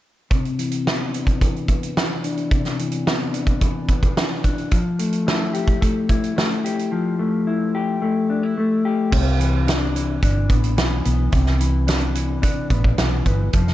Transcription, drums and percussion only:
0.31 kick medium
0.31 closed hi-hat medium
0.45 closed hi-hat soft
0.59 closed hi-hat medium
0.72 closed hi-hat soft
0.87 snare loud
1.14 closed hi-hat medium
1.27 kick medium
1.27 closed hi-hat soft
1.41 kick medium
1.41 closed hi-hat medium
1.56 closed hi-hat soft
1.68 kick medium
1.68 closed hi-hat medium
1.83 closed hi-hat soft
1.97 snare loud
2.24 closed hi-hat medium
2.37 closed hi-hat soft
2.51 kick medium
2.51 closed hi-hat medium
2.65 snare soft
2.65 closed hi-hat soft
2.79 closed hi-hat medium
2.92 closed hi-hat soft
3.07 snare loud
3.34 closed hi-hat medium
3.47 kick medium
3.47 closed hi-hat soft
3.61 kick medium
3.61 closed hi-hat medium
3.88 kick medium
3.88 closed hi-hat medium
4.03 kick medium
4.03 closed hi-hat soft
4.17 snare loud
4.44 kick medium
4.44 closed hi-hat medium
4.58 closed hi-hat soft
4.71 kick medium
4.71 closed hi-hat medium
4.99 closed hi-hat medium
5.13 closed hi-hat soft
5.28 snare loud
5.55 closed hi-hat medium
5.68 kick medium
5.68 closed hi-hat soft
5.82 kick medium
5.82 closed hi-hat medium
6.09 kick medium
6.09 closed hi-hat medium
6.24 closed hi-hat soft
6.38 snare medium
6.51 closed hi-hat soft
6.66 closed hi-hat medium
6.79 closed hi-hat soft
9.12 kick medium
9.12 crash medium
9.41 closed hi-hat medium
9.68 snare loud
9.68 closed hi-hat medium
9.96 closed hi-hat medium
10.23 kick medium
10.23 closed hi-hat medium
10.50 kick medium
10.50 closed hi-hat medium
10.64 closed hi-hat medium
10.78 snare loud
10.78 closed hi-hat medium
11.05 closed hi-hat medium
11.32 kick medium
11.32 closed hi-hat medium
11.46 snare soft
11.61 closed hi-hat medium
11.88 snare medium
11.88 closed hi-hat medium
12.00 closed hi-hat soft
12.15 closed hi-hat medium
12.43 kick medium
12.43 closed hi-hat medium
12.70 kick medium
12.70 closed hi-hat medium
12.84 kick medium
12.98 snare loud
12.98 closed hi-hat medium
13.26 kick medium
13.26 closed hi-hat medium
13.53 kick medium
13.53 closed hi-hat medium
13.67 snare soft

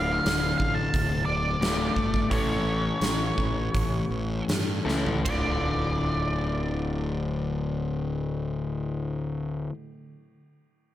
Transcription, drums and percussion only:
0.26 snare loud
0.26 open hi-hat soft
0.60 kick medium
0.94 kick medium
0.94 open hi-hat soft
1.62 snare loud
1.62 open hi-hat soft
1.96 kick medium
2.14 kick medium
2.31 kick medium
2.31 open hi-hat soft
3.01 snare medium
3.01 open hi-hat soft
3.38 kick medium
3.75 kick medium
3.75 open hi-hat soft
4.49 snare loud
4.49 open hi-hat soft
4.88 snare soft
5.06 floor tom medium
5.25 kick medium
5.25 floor tom medium
5.25 ride bell medium

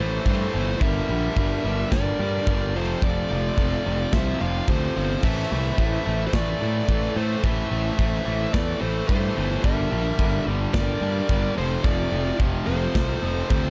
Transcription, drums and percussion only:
0.26 kick medium
0.26 china medium
0.81 kick loud
0.81 china medium
1.37 kick medium
1.37 china medium
1.92 kick loud
1.92 snare loud
1.92 china medium
2.47 kick medium
2.47 china medium
3.02 kick loud
3.02 china medium
3.58 kick medium
3.58 china medium
4.13 kick loud
4.13 snare loud
4.13 china medium
4.68 kick loud
4.68 china medium
5.23 kick loud
5.23 crash loud
5.23 china medium
5.78 kick medium
5.78 china medium
6.33 kick loud
6.33 snare loud
6.33 china medium
6.89 kick loud
6.89 china medium
7.44 kick loud
7.44 china medium
7.99 kick medium
7.99 china medium
8.54 kick loud
8.54 snare loud
8.54 china medium
9.09 kick loud
9.09 china medium
9.64 kick loud
9.64 china medium
10.19 kick medium
10.19 china medium
10.74 kick loud
10.74 snare loud
10.74 china medium
11.29 kick loud
11.29 china medium
11.84 kick loud
11.84 china medium
12.40 kick medium
12.40 china medium
12.95 kick loud
12.95 snare loud
12.95 china medium
13.50 kick medium
13.50 china medium

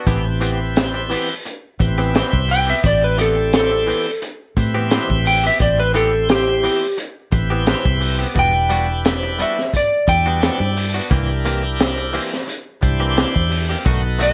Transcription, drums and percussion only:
0.07 kick loud
0.07 closed hi-hat medium
0.41 closed hi-hat medium
0.76 snare loud
0.76 closed hi-hat medium
1.11 open hi-hat medium
1.46 closed hi-hat medium
1.80 kick medium
1.80 closed hi-hat medium
2.15 snare loud
2.15 closed hi-hat medium
2.33 kick medium
2.49 open hi-hat medium
2.84 kick loud
2.84 closed hi-hat medium
3.18 closed hi-hat medium
3.53 snare loud
3.53 closed hi-hat medium
3.88 open hi-hat medium
4.22 closed hi-hat medium
4.57 kick medium
4.57 closed hi-hat medium
4.91 snare loud
4.91 closed hi-hat medium
5.10 kick medium
5.26 open hi-hat medium
5.60 kick medium
5.60 closed hi-hat medium
5.95 closed hi-hat medium
6.29 snare loud
6.29 closed hi-hat medium
6.64 open hi-hat medium
6.98 closed hi-hat medium
7.32 kick medium
7.32 closed hi-hat medium
7.66 snare medium
7.66 closed hi-hat medium
7.85 kick medium
8.01 open hi-hat medium
8.35 kick loud
8.35 closed hi-hat medium
8.70 closed hi-hat medium
9.05 snare loud
9.05 closed hi-hat medium
9.39 closed hi-hat medium
9.59 snare soft
9.74 kick medium
9.74 closed hi-hat medium
10.08 kick medium
10.08 closed hi-hat medium
10.42 snare loud
10.42 closed hi-hat medium
10.77 open hi-hat medium
11.11 kick loud
11.11 closed hi-hat medium
11.45 closed hi-hat medium
11.80 snare loud
11.80 closed hi-hat medium
12.14 open hi-hat medium
12.34 snare soft
12.49 closed hi-hat medium
12.83 kick medium
12.83 closed hi-hat medium
13.17 snare loud
13.17 closed hi-hat medium
13.36 kick medium
13.52 open hi-hat medium
13.86 kick medium
13.86 closed hi-hat medium
14.20 closed hi-hat medium

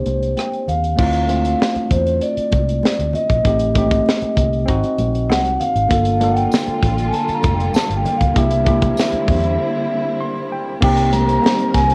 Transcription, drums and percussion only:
0.06 closed hi-hat medium
0.06 high conga medium
0.23 closed hi-hat soft
0.37 cross-stick loud
0.37 closed hi-hat medium
0.37 muted conga soft
0.37 high conga medium
0.52 closed hi-hat soft
0.52 muted conga soft
0.68 closed hi-hat medium
0.68 low conga medium
0.84 closed hi-hat soft
0.99 kick loud
0.99 crash loud
0.99 muted conga soft
1.13 closed hi-hat medium
1.29 closed hi-hat medium
1.29 high conga medium
1.45 closed hi-hat medium
1.60 snare loud
1.60 muted conga soft
1.75 closed hi-hat soft
1.75 muted conga soft
1.75 high conga soft
1.91 kick medium
1.91 closed hi-hat medium
1.91 low conga medium
2.07 closed hi-hat soft
2.21 closed hi-hat medium
2.37 closed hi-hat soft
2.52 kick medium
2.52 closed hi-hat medium
2.52 high conga medium
2.69 closed hi-hat soft
2.83 snare loud
2.83 muted conga soft
2.83 high conga medium
2.97 closed hi-hat soft
2.97 muted conga soft
3.13 closed hi-hat medium
3.13 low conga medium
3.30 kick medium
3.30 closed hi-hat soft
3.45 kick loud
3.45 closed hi-hat medium
3.59 closed hi-hat medium
3.59 muted conga soft
3.75 kick medium
3.75 closed hi-hat medium
3.75 high conga medium
3.91 kick medium
3.91 closed hi-hat medium
4.06 snare loud
4.06 muted conga soft
4.22 closed hi-hat soft
4.22 muted conga soft
4.22 high conga soft
4.37 kick medium
4.37 closed hi-hat medium
4.37 low conga medium
4.53 closed hi-hat soft
4.68 kick medium
4.68 closed hi-hat medium
4.68 muted conga soft
4.83 closed hi-hat soft
4.83 muted conga soft
4.98 closed hi-hat medium
4.98 high conga medium
5.15 closed hi-hat soft
5.30 snare loud
5.30 muted conga soft
5.30 high conga medium
5.45 closed hi-hat soft
5.45 muted conga soft
5.60 closed hi-hat medium
5.60 low conga medium
5.76 closed hi-hat medium
5.90 kick loud
5.90 closed hi-hat medium
5.90 muted conga soft
6.05 closed hi-hat medium
6.05 muted conga soft
6.21 closed hi-hat medium
6.21 high conga medium
6.36 closed hi-hat soft
6.52 snare loud
6.52 tambourine medium
6.66 closed hi-hat soft
6.66 muted conga soft
6.66 high conga soft
6.82 kick medium
6.82 closed hi-hat medium
6.82 low conga medium
6.98 closed hi-hat medium
7.13 closed hi-hat medium
7.13 muted conga soft
7.28 closed hi-hat medium
7.28 muted conga soft
7.43 kick loud
7.43 closed hi-hat medium
7.43 high conga medium
7.60 closed hi-hat soft
7.74 snare loud
7.74 tambourine medium
7.74 high conga medium
7.91 closed hi-hat soft
8.05 closed hi-hat medium
8.05 low conga medium
8.21 kick medium
8.21 closed hi-hat medium
8.36 kick loud
8.36 closed hi-hat medium
8.51 closed hi-hat medium
8.66 kick medium
8.66 closed hi-hat medium
8.66 high conga medium
8.82 kick loud
8.82 closed hi-hat medium
8.97 snare loud
8.97 tambourine medium
8.97 muted conga soft
9.12 closed hi-hat soft
9.12 muted conga soft
9.12 high conga soft
9.28 kick medium
9.28 open hi-hat medium
9.28 low conga medium
9.44 closed hi-hat soft
10.82 kick loud
10.82 crash loud
10.97 closed hi-hat medium
11.13 closed hi-hat medium
11.13 high conga medium
11.29 closed hi-hat medium
11.44 snare loud
11.44 muted conga soft
11.58 closed hi-hat medium
11.74 kick medium
11.74 snare soft
11.74 closed hi-hat medium
11.74 low conga medium
11.90 closed hi-hat medium

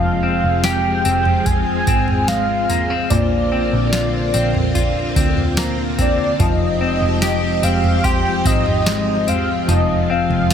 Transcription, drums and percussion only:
0.64 snare loud
0.64 tambourine medium
1.05 tambourine medium
1.25 floor tom medium
1.46 kick medium
1.46 floor tom medium
1.46 tambourine medium
1.87 kick loud
1.87 tambourine medium
2.08 floor tom medium
2.28 snare loud
2.28 tambourine medium
2.69 floor tom medium
2.69 tambourine medium
3.10 floor tom loud
3.10 tambourine medium
3.93 snare loud
3.93 tambourine loud
4.34 tambourine medium
4.54 floor tom medium
4.75 kick medium
4.75 floor tom medium
4.75 tambourine medium
5.16 kick loud
5.16 tambourine medium
5.37 floor tom medium
5.57 snare loud
5.57 tambourine medium
5.99 kick medium
5.99 floor tom medium
5.99 tambourine medium
6.40 kick loud
6.40 floor tom loud
6.40 tambourine medium
7.22 snare loud
7.22 tambourine medium
7.63 tambourine medium
7.84 floor tom medium
8.04 kick medium
8.04 floor tom medium
8.04 tambourine medium
8.45 kick loud
8.45 tambourine medium
8.66 floor tom medium
8.86 snare loud
8.86 tambourine loud
9.28 floor tom medium
9.28 tambourine medium
9.69 floor tom loud
9.69 tambourine medium
10.31 floor tom medium
10.51 snare loud
10.51 tambourine loud

